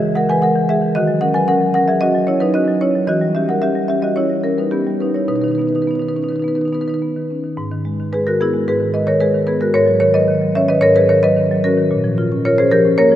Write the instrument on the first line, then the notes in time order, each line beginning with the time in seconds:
marimba
Already playing: G#3 G#4 E5
0.02 E3
0.15 G#3 A#4 F#5
0.29 E3 B4 G#5
0.42 G#3 A#4 F#5
0.56 E3
0.69 G#3 G#4 E5
0.82 E3
0.95 D#3 F#4 D#5
1.08 F#3
1.21 C#4 A#4 F#5
1.34 F#3 B4 G#5
1.48 C#4 A#4 F#5
1.61 F#3
1.74 C#4 A#4 F#5
1.87 F#3 G#4 E5
2.01 C#4 F#4 D#5
2.15 F#3
2.27 C#4 E4 C#5
2.40 F#3 D#4 B4
2.54 C#4 F#4 D#5
2.68 F#3
2.81 C#4 E4 C#5
2.95 F#3
3.07 E3 F#4 D#5
3.21 G3
3.35 C#4 G4 E5
3.48 G3 A#4 F#5
3.61 C#4 G4 E5
3.75 G3
3.88 C#4 G4 E5
4.02 G3 F#4 D#5
4.16 C#4 E4 C#5
4.29 G3
4.44 C#4 A#4
4.58 G3 D#4 B4
4.71 B3 C#4 G4
4.87 G3
5.00 C#4 D#4 B4
5.14 G3 E4 C#5
5.28 B2 D#4 B4
5.36 D#4 B4
5.42 D#3 D#4 B4
5.48 D#4 B4
5.55 B3 B4
5.59 D#4 B4
5.67 D#4 B4
5.73 D#3 D#4 B4
5.82 D#4 B4
5.87 B3 D#4 B4
5.95 B4
5.99 D#3 D#4 B4
6.08 D#4 B4
6.16 C#4 D#4 B4
6.23 D#4 B4
6.29 D#3 D#4 B4
6.36 D#4 B4
6.42 B3 B4
6.48 D#4 B4
6.55 D#3 D#4 B4
6.61 B4
6.65 D#4 B4
6.73 B3 D#4 B4
6.81 D#4 B4
6.88 D#3 D#4 B4
6.94 B4
7.02 B3
7.16 D#3
7.30 C#4
7.44 D#3
7.57 G#2
7.72 D#3
7.85 G#3
8.00 D#3
8.13 G#3 G#4 B4
8.27 D#3 F#4 A#4
8.41 B3 E4 G#4
8.53 G#3
8.68 G#2 G#4 B4
8.80 D#3
8.94 G#3 B4 D#5
9.07 D#3 A#4 C#5
9.20 G#3 G#4 B4
9.34 D#3
9.47 B3 G#4 B4
9.60 G#3 F#4 A#4
9.74 G#2 A#4 C#5
9.86 F#3
10.00 D#3 A#4 C#5
10.14 F#3 B4 D#5
10.28 D#3
10.41 F#3
10.55 C#4 C#5 E5
10.68 D#3 B4 D#5
10.81 G#2 A#4 C#5
10.95 F#3 G#4 B4
11.09 D#3 A#4 C#5
11.23 F#3 B4 D#5
11.36 D#3
11.51 F#3
11.64 C#4 F#4 A#4
11.78 D#3
11.91 A#2
12.04 F3
12.18 F4
12.32 C#4
12.45 F4 A#4 C#5
12.58 C#4 G#4 C5
12.71 F3 G4 A#4
12.85 C#4
12.98 A#3 A#4 C#5
13.11 F3